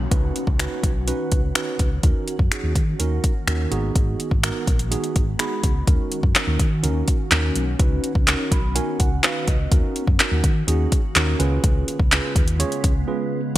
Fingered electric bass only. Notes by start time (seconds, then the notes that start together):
0.11 C#2
0.47 C#2
0.83 B1
1.32 C#2
1.79 C#2
2.03 D#2
2.39 F#2
2.63 D#2
2.75 D#3
3.00 D#2
3.47 D#2
3.71 G#1
3.95 G#1
4.31 G#1
4.67 A#1
5.16 G#1
5.64 C#2
5.87 D#2
6.23 F#2
6.47 D#2
6.59 D#3
6.84 D#2
7.32 D#2
7.56 B1
7.79 C#2
8.15 C#2
8.52 B1
9.00 C#2
9.48 C#2
9.72 D#2
10.07 F#2
10.32 D#2
10.44 D#3
10.68 D#2
11.16 D#2
11.40 C#2
11.64 C#2
11.99 C#2
12.36 D#2
12.84 C#2